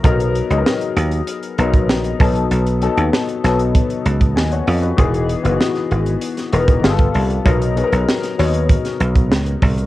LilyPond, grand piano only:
\new Staff \with { instrumentName = "Grand piano" } { \time 4/4 \key e \lydian \tempo 4 = 97 << { r1 | r2. <dis'' gis''>16 <cis'' fis''>16 <a' dis''>16 <fis' b'>16~ | <fis' b'>16 r2. r8. | r1 | } \\ { <fis b dis' ais'>8 r16 <fis b dis' gis' ais'>4~ <fis b dis' gis' ais'>16 r8 <fis b dis' ais'>4 <fis b dis' a'>8~ | <fis b dis' a'>16 r16 <fis b dis' a'>8. r16 <fis b dis' a'>4. r4 | <e b dis' gis'>8 r16 <e b dis' fis'>4~ <e b dis' fis'>16 r8 <e b dis' ais'>8 <g b f' gis' a'>8. r16 | <fis b dis' ais'>16 r16 <fis b dis' gis' ais'>8. r16 <fis b dis' cis''>4. r4 | } >> }